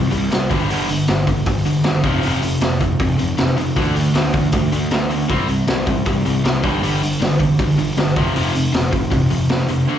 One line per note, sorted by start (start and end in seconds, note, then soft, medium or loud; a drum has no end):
0.00 0.10 C3 medium
0.00 0.10 G3 medium
0.11 0.29 C2 medium
0.11 0.29 C3 medium
0.11 0.29 G3 medium
0.11 open hi-hat medium
0.32 0.48 C2 medium
0.32 0.49 C3 medium
0.32 0.49 G3 medium
0.32 snare loud
0.32 open hi-hat medium
0.49 0.66 G1 medium
0.49 0.68 G2 medium
0.49 0.69 D3 medium
0.49 0.69 G3 medium
0.49 kick loud
0.49 open hi-hat medium
0.69 1.02 G1 medium
0.69 0.87 G2 medium
0.69 0.88 D3 medium
0.69 0.88 G3 loud
0.69 open hi-hat medium
0.89 1.06 G2 medium
0.89 1.06 D3 medium
0.89 open hi-hat medium
1.08 1.41 G1 medium
1.08 1.26 G2 medium
1.08 1.26 D3 medium
1.08 snare loud
1.08 open hi-hat medium
1.27 1.45 G2 medium
1.27 1.45 D3 medium
1.27 kick medium
1.27 open hi-hat medium
1.46 1.62 G1 medium
1.46 1.64 G2 medium
1.46 1.64 D3 medium
1.46 kick loud
1.46 open hi-hat medium
1.65 1.82 G1 medium
1.65 1.83 G2 medium
1.65 1.83 D3 medium
1.65 open hi-hat medium
1.84 2.01 G1 medium
1.84 2.02 G2 medium
1.84 2.02 D3 medium
1.84 snare loud
1.84 open hi-hat medium
2.04 2.20 F1 medium
2.04 2.21 F2 medium
2.04 2.22 C3 medium
2.04 2.22 F3 medium
2.04 kick loud
2.04 open hi-hat medium
2.22 2.55 F1 loud
2.22 2.41 F2 medium
2.22 2.41 C3 medium
2.22 2.41 F3 medium
2.22 open hi-hat medium
2.43 2.60 F2 medium
2.43 2.60 C3 medium
2.43 open hi-hat medium
2.61 2.93 F1 medium
2.61 2.79 F2 medium
2.61 2.79 C3 medium
2.61 snare loud
2.61 open hi-hat medium
2.80 2.98 F2 medium
2.80 2.98 C3 medium
2.80 kick medium
2.80 open hi-hat medium
2.99 3.16 F1 medium
2.99 3.17 F2 medium
2.99 3.17 C3 medium
2.99 kick loud
2.99 open hi-hat medium
3.18 3.35 F1 medium
3.18 3.36 F2 medium
3.18 3.36 C3 medium
3.18 open hi-hat soft
3.37 3.70 F1 medium
3.37 3.55 F2 medium
3.37 3.55 C3 medium
3.37 snare loud
3.37 open hi-hat medium
3.57 3.74 F2 medium
3.57 3.74 C3 medium
3.57 open hi-hat medium
3.76 4.08 D2 medium
3.76 3.94 D3 medium
3.76 3.94 A3 medium
3.76 3.95 D4 medium
3.76 kick loud
3.76 open hi-hat medium
3.95 4.13 D3 medium
3.95 4.13 A3 medium
3.95 open hi-hat medium
4.14 4.46 D2 medium
4.14 4.32 D3 medium
4.14 4.32 A3 medium
4.14 snare loud
4.14 open hi-hat medium
4.33 4.51 D3 medium
4.33 4.51 A3 medium
4.33 kick medium
4.33 open hi-hat medium
4.52 4.69 D2 medium
4.52 4.70 D3 medium
4.52 4.71 A3 medium
4.52 kick loud
4.52 open hi-hat medium
4.72 4.88 D2 medium
4.72 4.89 D3 medium
4.72 4.90 A3 medium
4.72 open hi-hat medium
4.91 5.23 D2 medium
4.91 5.08 D3 medium
4.91 5.09 A3 medium
4.91 snare loud
4.91 open hi-hat medium
5.10 5.27 D3 medium
5.10 5.28 A3 medium
5.10 open hi-hat medium
5.29 5.62 C2 medium
5.29 5.47 C3 medium
5.29 5.47 G3 loud
5.29 5.48 C4 medium
5.29 kick loud
5.29 open hi-hat medium
5.48 5.66 C3 medium
5.48 5.66 G3 medium
5.48 open hi-hat soft
5.67 6.00 C2 loud
5.67 5.85 C3 medium
5.67 5.85 G3 medium
5.67 snare loud
5.67 open hi-hat medium
5.86 6.04 C3 medium
5.86 6.04 G3 medium
5.86 kick loud
5.86 open hi-hat medium
6.06 6.22 C2 medium
6.06 6.23 C3 medium
6.06 6.23 G3 medium
6.06 kick loud
6.06 open hi-hat medium
6.25 6.41 C2 medium
6.25 6.43 C3 medium
6.25 6.42 G3 medium
6.25 open hi-hat medium
6.44 6.61 C2 medium
6.44 6.62 C3 medium
6.44 6.62 G3 medium
6.44 snare loud
6.44 open hi-hat medium
6.62 6.80 G1 medium
6.62 6.81 G2 medium
6.62 6.81 D3 medium
6.62 6.81 G3 loud
6.62 kick loud
6.62 open hi-hat medium
6.82 7.14 G1 medium
6.82 7.00 G2 medium
6.82 7.01 D3 medium
6.82 7.01 G3 medium
6.82 open hi-hat medium
7.02 7.18 G2 medium
7.02 7.19 D3 medium
7.02 open hi-hat medium
7.20 7.53 G1 medium
7.20 7.37 G2 medium
7.20 7.38 D3 medium
7.20 snare loud
7.20 open hi-hat medium
7.39 7.57 G2 medium
7.39 7.57 D3 medium
7.39 kick medium
7.39 open hi-hat medium
7.59 7.75 G1 medium
7.59 7.76 G2 medium
7.59 7.76 D3 medium
7.59 kick loud
7.59 open hi-hat medium
7.78 7.94 G1 medium
7.78 7.95 G2 medium
7.78 7.95 D3 medium
7.78 open hi-hat medium
7.97 8.13 G1 medium
7.97 8.15 G2 medium
7.97 8.15 D3 medium
7.97 snare loud
7.97 open hi-hat medium
8.16 8.32 F1 medium
8.16 8.33 F2 medium
8.16 8.34 C3 loud
8.16 8.35 F3 loud
8.16 kick loud
8.16 open hi-hat medium
8.34 8.67 F1 medium
8.34 8.53 F2 medium
8.34 8.53 C3 medium
8.34 8.54 F3 medium
8.34 open hi-hat medium
8.54 8.71 F2 medium
8.54 8.71 C3 medium
8.54 open hi-hat soft
8.72 9.06 F1 medium
8.72 8.90 F2 medium
8.72 8.90 C3 medium
8.72 snare loud
8.72 open hi-hat medium
8.91 9.09 F2 medium
8.91 9.09 C3 medium
8.91 kick medium
8.91 open hi-hat medium
9.10 9.28 F1 medium
9.10 9.28 F2 medium
9.10 9.29 C3 medium
9.10 kick loud
9.10 open hi-hat medium
9.30 9.47 F1 medium
9.30 9.48 F2 medium
9.30 9.48 C3 medium
9.30 open hi-hat medium
9.49 9.82 F1 medium
9.49 9.67 F2 medium
9.49 9.68 C3 medium
9.49 snare loud
9.49 open hi-hat medium
9.68 9.86 F2 medium
9.68 9.87 C3 medium
9.68 open hi-hat medium
9.88 9.99 D3 medium
9.88 9.99 A3 medium
9.88 9.99 D4 medium